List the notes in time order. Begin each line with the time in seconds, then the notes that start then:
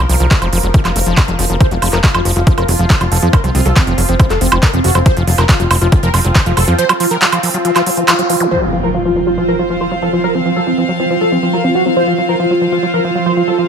Already playing: F3 A#4
0.09 C2 F3, open hi-hat
0.20 C2 F3, closed hi-hat
0.31 F#3, kick, clap, closed hi-hat
0.42 F1 F3, closed hi-hat, high woodblock
0.53 F1 F3, open hi-hat
0.63 F1 F#3, closed hi-hat
0.74 F3, kick, closed hi-hat
0.85 F1 F3, clap, closed hi-hat, high woodblock
0.96 F1 A3, open hi-hat
1.07 F1 F3, closed hi-hat
1.17 F4, kick, clap, closed hi-hat, high woodblock
1.28 F1 F#3, closed hi-hat
1.39 F1 F3, open hi-hat
1.50 F1 F3, closed hi-hat
1.61 F3 F4 C5, kick, closed hi-hat
1.71 F1 F#3 F4, closed hi-hat
1.82 F1 F3 F4, open hi-hat, high woodblock
1.93 F1 F3 A#4, clap, closed hi-hat
2.04 F#3 F4, kick, clap, closed hi-hat
2.14 F1 F3 F4, closed hi-hat, high woodblock
2.25 F1 F3, open hi-hat
2.36 F1 F#3 F4, closed hi-hat
2.47 F3 F4, kick, closed hi-hat
2.58 F1 F3 A#4, closed hi-hat, high woodblock
2.68 F1 F#3 F4, open hi-hat
2.79 F1 F3 F4, closed hi-hat
2.90 F3 C5, kick, clap, closed hi-hat
3.01 F1 F#3 F4, closed hi-hat, high woodblock
3.12 F1 F3 A4, open hi-hat
3.22 F2 F3 F4, closed hi-hat
3.33 F#3 A#4, kick, closed hi-hat, high woodblock
3.44 C2 F3 C4, closed hi-hat
3.55 C2 F3 C4, open hi-hat
3.66 C2 F#3 A4, closed hi-hat
3.76 F3 C4, kick, clap, closed hi-hat, high woodblock
3.87 F1 F3 C4, closed hi-hat
3.98 F1 F#3, open hi-hat
4.09 F1 F3 C4, closed hi-hat
4.20 F3 C4, kick, closed hi-hat, high woodblock
4.30 F1 F#3 A4, clap, closed hi-hat
4.41 F1 F3 C4, open hi-hat
4.52 F1 F3 C4, closed hi-hat, high woodblock
4.63 F#3 A#4, kick, clap, closed hi-hat
4.73 F1 F3 C4, closed hi-hat
4.84 F1 F3 F#4, open hi-hat
4.95 F1 F#3 C4, closed hi-hat, high woodblock
5.06 F3 C4 C5, kick, closed hi-hat
5.17 F1 F3 F4, closed hi-hat
5.27 F1 F#3 F4, open hi-hat
5.38 F1 F3 A#4, clap, closed hi-hat, high woodblock
5.49 F3 F4, kick, clap, closed hi-hat
5.60 F1 F#3 F4, closed hi-hat
5.71 F1 F3, open hi-hat, high woodblock
5.81 F1 F3 F4, closed hi-hat
5.92 F#3 F4, kick, closed hi-hat
6.03 F1 F3 A#4, closed hi-hat
6.14 F1 F3 F4, open hi-hat, high woodblock
6.25 F1 F#3 F4, closed hi-hat
6.35 F3 C5, kick, clap, closed hi-hat
6.46 F1 F3 F4, closed hi-hat
6.57 F1 F#3 A4, open hi-hat, high woodblock
6.68 F2 F3 F4, closed hi-hat
6.79 F3 C5, closed hi-hat
6.89 F#3 F4, closed hi-hat, high woodblock
7.00 F3 F4, open hi-hat
7.11 F3 A#4, closed hi-hat
7.22 F#3 F4, clap, closed hi-hat
7.32 F3 F4, closed hi-hat, high woodblock
7.43 F3, open hi-hat
7.54 F#3 F4, closed hi-hat
7.65 F3 F4, closed hi-hat
7.76 F3 F4, clap, closed hi-hat, high woodblock
7.86 F#3 F4, open hi-hat
7.97 F3 F4, closed hi-hat
8.08 F3 F4, clap, closed hi-hat, high woodblock
8.19 F#3 F4, closed hi-hat
8.30 F3 F4, open hi-hat
8.40 F3 F4, closed hi-hat, zap
8.51 F3 C4 F4 C5, impact
8.59 F#3 F4
8.73 F3 F4
8.84 F3 A#4
8.94 F#3 F4
9.05 F3 F4
9.16 F3
9.27 F#3 F4 C5
9.38 F3 F4
9.48 F3 A#4
9.59 F#3 F4
9.69 F3 F4 F5
9.81 F3 C5
9.91 F#3 F4
10.02 F3 A4
10.13 F3 F4
10.24 F#3 A#4
10.35 F3 C4
10.45 F3 C4
10.56 F#3 A4
10.67 F3 C4
10.78 F3 C4
10.89 F#3
10.99 F3 C4
11.10 F3 C4
11.21 F#3 A4
11.32 F3 C4
11.43 F3 C4
11.53 F#3 A#4
11.64 F3 C4
11.75 F3 F#4
11.86 F#3 C4
11.96 F3 C5
12.07 F3 F4
12.18 F#3 F4
12.29 F3 A#4
12.40 F3 F4
12.50 F#3 F4
12.61 F3
12.72 F3 F4
12.83 F#3 F4
12.94 F3 A#4
13.04 F3 F4
13.15 F#3 F4
13.26 F3 C5
13.37 F3 F4
13.48 F#3 A4
13.58 F3 F4